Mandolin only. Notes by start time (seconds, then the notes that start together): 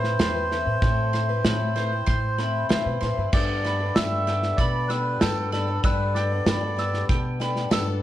Already playing: C4 C5 B5
0.19 C6
1.13 C6
1.45 B5
1.76 C5
2.06 C6
2.38 B5
2.69 C5
3.01 C6
3.33 G5
3.65 B5
3.96 E6
4.27 G5
4.59 B5
4.90 E6
5.21 G5
5.52 B5
5.84 E6
6.16 G5
6.48 B5
6.79 E6
7.09 G5
7.41 B5
7.73 E6